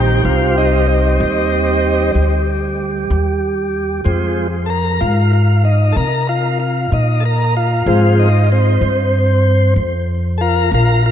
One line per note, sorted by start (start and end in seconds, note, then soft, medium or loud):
0.00 0.22 A#1 medium
0.00 0.21 D#3 medium
0.00 0.22 G3 soft
0.00 0.22 C4 medium
0.00 0.24 G4 medium
0.23 1.17 C2 medium
0.23 4.01 G3 medium
0.23 0.86 C4 medium
0.23 0.56 F4 medium
0.58 0.88 D#4 medium
0.88 2.11 C4 medium
0.88 2.12 D#4 medium
1.20 2.13 D#2 medium
2.15 3.08 D2 medium
3.10 4.03 D#2 medium
4.04 4.98 F2 medium
4.04 4.47 F3 medium
4.04 4.47 G#3 medium
4.04 4.48 C4 medium
4.66 4.70 A4 medium
4.66 5.00 A#4 loud
5.01 5.93 G#2 medium
5.01 5.32 F4 medium
5.33 5.64 F4 medium
5.65 5.95 D#4 medium
5.92 6.88 C3 medium
5.92 5.96 A4 medium
5.97 6.27 A#4 loud
6.29 6.59 F4 medium
6.60 6.90 F4 medium
6.92 7.84 A#2 medium
6.92 7.23 D#4 medium
7.20 7.24 A4 medium
7.25 7.55 A#4 medium
7.57 7.86 F4 medium
7.86 8.79 G#2 medium
7.86 8.29 F3 medium
7.86 8.29 G#3 soft
7.86 8.29 C4 medium
7.86 8.18 F4 medium
8.19 8.50 D#4 medium
8.52 9.74 C4 loud
8.81 9.74 G2 medium
9.76 10.69 F2 medium
10.38 10.70 F4 medium
10.38 10.41 A4 medium
10.38 10.72 A#4 loud
10.72 11.12 A#1 medium
10.72 11.03 F4 medium
10.72 11.04 A#4 medium
11.06 11.12 F4 medium
11.06 11.12 A#4 medium